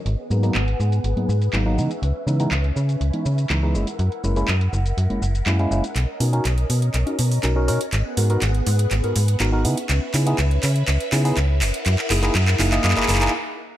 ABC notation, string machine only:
X:1
M:4/4
L:1/8
Q:1/4=122
K:B
V:1 name="String machine"
[B,Gf]6- [B,Gf] [CBe]- | [CBe]6- [CBe] [EAf]- | [EAf]8 | [CAd]8 |
[B,Gf]6- [B,Gf] [CBe]- | [CBe]6- [CBe] [EAf]- | [EAf]6 z2 |]